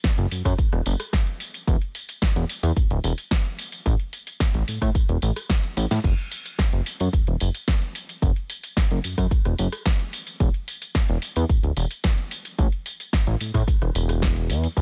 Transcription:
0.04 kick, snare, closed hi-hat, tambourine
0.18 analog synth bass F#1, closed hi-hat
0.31 analog synth bass F#2, open hi-hat, tambourine
0.45 analog synth bass F#2, kick, cross-stick, closed hi-hat, tambourine
0.58 kick, closed hi-hat, tambourine
0.73 analog synth bass E1, cross-stick, closed hi-hat
0.86 analog synth bass F#1, open hi-hat, tambourine
1.00 cross-stick, closed hi-hat, tambourine
1.13 kick, snare, closed hi-hat, tambourine
1.27 closed hi-hat
1.40 open hi-hat, tambourine
1.54 closed hi-hat, tambourine
1.67 analog synth bass E1, kick, closed hi-hat, tambourine
1.82 closed hi-hat
1.95 open hi-hat, tambourine
2.09 closed hi-hat, tambourine
2.22 kick, snare, closed hi-hat, tambourine
2.36 analog synth bass E1, closed hi-hat
2.49 open hi-hat, tambourine
2.63 analog synth bass E2, closed hi-hat, tambourine
2.77 analog synth bass D1, kick, closed hi-hat, tambourine
2.91 analog synth bass D1, closed hi-hat
3.04 analog synth bass E1, open hi-hat, tambourine
3.18 closed hi-hat, tambourine
3.31 kick, snare, closed hi-hat, tambourine
3.45 closed hi-hat
3.59 open hi-hat, tambourine
3.72 closed hi-hat, tambourine
3.86 analog synth bass A1, kick, closed hi-hat, tambourine
4.00 closed hi-hat
4.13 open hi-hat, tambourine
4.27 closed hi-hat, tambourine
4.40 kick, snare, closed hi-hat, tambourine
4.54 analog synth bass A1, closed hi-hat
4.68 analog synth bass A2, open hi-hat, tambourine
4.82 analog synth bass A2, kick, cross-stick, closed hi-hat, tambourine
4.95 kick, closed hi-hat, tambourine
5.09 analog synth bass E1, closed hi-hat
5.22 analog synth bass A1, open hi-hat, tambourine
5.36 cross-stick, closed hi-hat, tambourine
5.50 kick, snare, closed hi-hat, tambourine
5.64 closed hi-hat
5.77 analog synth bass A1, open hi-hat, tambourine
5.91 analog synth bass A2, snare, closed hi-hat, tambourine
6.04 analog synth bass F#1, kick, closed hi-hat, tambourine, crash
6.18 closed hi-hat
6.32 open hi-hat, tambourine
6.46 closed hi-hat, tambourine
6.59 kick, snare, closed hi-hat, tambourine
6.73 analog synth bass F#1, closed hi-hat
6.86 open hi-hat, tambourine
7.00 analog synth bass F#2, closed hi-hat, tambourine
7.13 analog synth bass E1, kick, closed hi-hat, tambourine
7.27 analog synth bass E1, closed hi-hat
7.40 analog synth bass F#1, open hi-hat, tambourine
7.55 closed hi-hat, tambourine
7.68 kick, snare, closed hi-hat, tambourine
7.82 closed hi-hat
7.95 open hi-hat, tambourine
8.09 closed hi-hat, tambourine
8.22 analog synth bass F#1, kick, closed hi-hat, tambourine
8.36 closed hi-hat
8.50 open hi-hat, tambourine
8.63 closed hi-hat, tambourine
8.77 kick, snare, closed hi-hat, tambourine
8.91 analog synth bass F#1, closed hi-hat
9.04 analog synth bass F#2, open hi-hat, tambourine
9.18 analog synth bass F#2, kick, cross-stick, closed hi-hat, tambourine
9.31 kick, closed hi-hat, tambourine
9.45 analog synth bass E1, cross-stick, closed hi-hat
9.59 analog synth bass F#1, open hi-hat, tambourine
9.72 cross-stick, closed hi-hat, tambourine
9.86 kick, snare, closed hi-hat, tambourine
9.99 closed hi-hat
10.13 open hi-hat, tambourine
10.27 closed hi-hat, tambourine
10.40 analog synth bass E1, kick, closed hi-hat, tambourine
10.54 closed hi-hat
10.68 open hi-hat, tambourine
10.82 closed hi-hat, tambourine
10.95 kick, snare, closed hi-hat, tambourine
11.09 analog synth bass E1, closed hi-hat
11.22 open hi-hat, tambourine
11.36 analog synth bass E2, closed hi-hat, tambourine
11.49 analog synth bass D1, kick, closed hi-hat, tambourine
11.63 analog synth bass D1, closed hi-hat
11.77 analog synth bass E1, open hi-hat, tambourine
11.91 closed hi-hat, tambourine
12.04 kick, snare, closed hi-hat, tambourine
12.18 closed hi-hat
12.31 open hi-hat, tambourine
12.45 closed hi-hat, tambourine
12.59 analog synth bass A1, kick, closed hi-hat, tambourine
12.72 closed hi-hat
12.86 open hi-hat, tambourine
13.00 closed hi-hat, tambourine
13.13 kick, snare, closed hi-hat, tambourine
13.27 analog synth bass A1, closed hi-hat
13.41 analog synth bass A2, open hi-hat, tambourine
13.54 analog synth bass A2, kick, cross-stick, closed hi-hat, tambourine
13.68 kick, closed hi-hat, tambourine
13.82 analog synth bass E1, cross-stick, closed hi-hat
13.95 analog synth bass E1, open hi-hat, tambourine
14.09 cross-stick, closed hi-hat, tambourine
14.22 kick, snare, closed hi-hat, tambourine
14.36 closed hi-hat
14.50 analog synth bass E2, open hi-hat, tambourine
14.64 closed hi-hat, tambourine
14.77 analog synth bass F#1, kick, closed hi-hat, tambourine

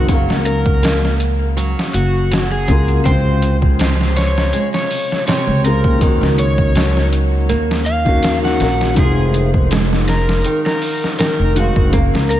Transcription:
Already playing: upright bass F#1, felt piano D#3 G#3 C4 F5
0.06 felt piano C#3, nylon-string guitar F#3, kick, closed hi-hat
0.11 felt piano A#3 F5
0.29 upright bass C#2, snare
0.46 electric slide guitar A#4, closed hi-hat
0.66 kick
0.83 nylon-string guitar A#3, snare, closed hi-hat
1.05 snare
1.20 closed hi-hat
1.57 nylon-string guitar F#3, closed hi-hat
1.79 snare
1.94 upright bass F#1, electric slide guitar F#4, closed hi-hat
2.31 nylon-string guitar F#3, snare, closed hi-hat
2.52 electric slide guitar G#4
2.68 upright bass C#2, felt piano C#3 A#3 F4, kick, closed hi-hat
2.88 closed hi-hat
3.03 upright bass C#2, felt piano C#3 G#3, nylon-string guitar C4, electric slide guitar C5, kick, closed hi-hat
3.08 felt piano C3 F4
3.42 closed hi-hat
3.62 kick
3.79 nylon-string guitar F3, snare, closed hi-hat
4.01 snare
4.17 electric slide guitar C#5, snare, closed hi-hat
4.38 snare
4.53 nylon-string guitar G#3, closed hi-hat
4.74 electric slide guitar C#5, snare
4.91 open hi-hat
5.12 snare
5.27 nylon-string guitar C3, electric slide guitar C#5, snare, closed hi-hat
5.47 upright bass C#2
5.64 felt piano C#3 G#3 C4 F4, electric slide guitar A#4, closed hi-hat
5.84 upright bass D#2, kick
5.99 felt piano D#3 A#3, nylon-string guitar D#3, kick, closed hi-hat
6.04 felt piano C#4 F#4
6.21 upright bass C#2, snare
6.38 electric slide guitar C#5, closed hi-hat
6.58 kick
6.75 nylon-string guitar F#3, snare, closed hi-hat
6.97 snare
7.13 closed hi-hat
7.49 upright bass D#2, nylon-string guitar A#3, closed hi-hat
7.71 snare
7.86 electric slide guitar F5, closed hi-hat
8.05 felt piano D#3 A#3 C#4 F#4, kick
8.23 nylon-string guitar D#3, snare, closed hi-hat
8.42 felt piano D#3 A#3 C#4 F#4, electric slide guitar F#5, snare
8.59 upright bass A#1, felt piano D#3 A#3 C#4, snare, closed hi-hat
8.63 felt piano A#4
8.81 snare
8.94 upright bass F1, felt piano D#3 G#3, nylon-string guitar F3, kick, closed hi-hat
8.99 felt piano C4 F4, electric slide guitar G#4
9.34 closed hi-hat
9.54 kick
9.71 nylon-string guitar G#3, snare, closed hi-hat
9.93 snare
10.08 electric slide guitar A#4, snare, closed hi-hat
10.29 snare
10.44 nylon-string guitar D#3, closed hi-hat
10.66 electric slide guitar A#4, snare
10.82 open hi-hat
11.04 snare
11.19 nylon-string guitar D#3, electric slide guitar A#4, snare, closed hi-hat
11.39 upright bass F1
11.55 felt piano D#3 G#3 C4, electric slide guitar F#4, closed hi-hat
11.59 felt piano F5
11.76 upright bass F#1, kick
11.90 felt piano C#3, nylon-string guitar A#3, kick, closed hi-hat
11.95 felt piano A#3 F5
12.14 upright bass C#2, snare
12.30 electric slide guitar A#4, closed hi-hat

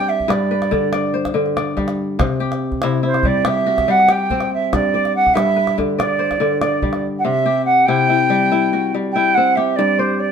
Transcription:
Already playing: kora G2 C4 G4 D5, flute G5
0.09 flute E5
0.20 calabash thump
0.28 kora G2 B4, flute D5, calabash click
0.51 kora B4
0.62 calabash click
0.71 kora D3, calabash thump
0.92 kora D5, calabash click
1.14 kora C5
1.25 calabash thump, calabash click
1.34 kora D3
1.46 calabash click
1.56 kora D5, calabash click
1.77 kora G3, calabash thump, calabash click
1.88 calabash click
2.19 kora C3, calabash thump, calabash click
2.40 kora G4, calabash click
2.52 calabash click
2.72 calabash thump
2.82 kora C3 E4, calabash click
3.03 kora E4, flute C5
3.14 calabash click
3.23 kora G3, flute D5, calabash thump
3.45 kora G4, flute E5, calabash click
3.66 kora F#4
3.78 calabash thump, calabash click
3.88 kora G3, flute F#5
4.00 calabash click
4.09 kora G4, flute G5, calabash click
4.30 kora C4, calabash thump, calabash click
4.40 calabash click
4.54 flute E5
4.73 kora G2, flute D5, calabash thump, calabash click
4.94 kora D5
5.05 calabash click
5.16 flute F#5
5.27 calabash thump, calabash click
5.34 kora G2 B4, flute E5, calabash click
5.56 kora B4
5.67 calabash click
5.78 kora D3, calabash thump
5.98 flute D5, kora D5, calabash click
6.19 kora C5
6.31 calabash thump, calabash click
6.40 kora D3, calabash click
6.61 flute D5, kora D5, calabash click
6.82 kora G3, calabash thump, calabash click
6.93 calabash click
7.19 flute F#5
7.24 kora C3, flute E5
7.46 kora G4
7.65 flute F#5
7.86 kora C3 E4, flute G5
8.09 kora E4
8.30 kora G3
8.52 kora E4
8.73 kora F#4
8.94 kora G3
9.12 kora E4, flute G5
9.34 kora C4, flute F#5
9.56 kora G4, flute E5
9.76 kora G2, flute D5
9.99 flute C5, kora D5
10.20 flute D5

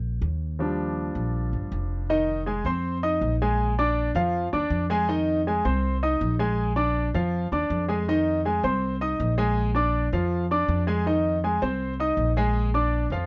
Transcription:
Already playing: upright bass A#1
0.22 upright bass D#2
0.59 grand piano F3 G3 D4
1.15 upright bass A#1
1.53 upright bass G1
1.72 upright bass F1
2.10 grand piano D#3 D#4 D#5
2.46 grand piano G#3 G#4 G#5
2.65 upright bass F2, grand piano C4 C5 C6
3.03 grand piano D#4 D#5 D#6
3.21 upright bass A#1
3.42 grand piano G#3 G#4 G#5
3.79 grand piano D4 D5 D6
4.15 upright bass F2, grand piano F3 F4 F5
4.53 upright bass D#2, grand piano D4 D5 D6
4.70 upright bass F2
4.90 grand piano G#3 G#4 G#5
5.09 grand piano D#3 D#4 D#5
5.47 grand piano G#3 G#4 G#5
5.65 upright bass C2, grand piano C4 C5 C6
6.03 grand piano D#4 D#5 D#6
6.21 upright bass A#1
6.39 grand piano G#3 G#4 G#5
6.76 grand piano D4 D5 D6
7.14 upright bass F2, grand piano F3 F4 F5
7.52 upright bass D#2, grand piano D4 D5 D6
7.70 upright bass F2
7.88 grand piano G#3 G#4 G#5
8.08 grand piano D#3 D#4 D#5
8.45 grand piano G#3 G#4 G#5
8.64 upright bass C2, grand piano C4 C5 C6
9.01 grand piano D#4 D#5 D#6
9.20 upright bass A#1
9.38 grand piano G#3 G#4 G#5
9.75 grand piano D4 D5 D6
10.13 upright bass F2, grand piano F3 F4 F5
10.51 grand piano D4 D5 D6
10.68 upright bass F2
10.87 grand piano G#3 G#4 G#5
11.06 grand piano D#3 D#4 D#5
11.44 grand piano G#3 G#4 G#5
11.62 upright bass C2, grand piano C4 C5 C6
12.00 grand piano D#4 D#5 D#6
12.17 upright bass A#1
12.37 grand piano G#3 G#4 G#5
12.74 grand piano D4 D5 D6
13.10 upright bass F2, grand piano F3 F4 F5

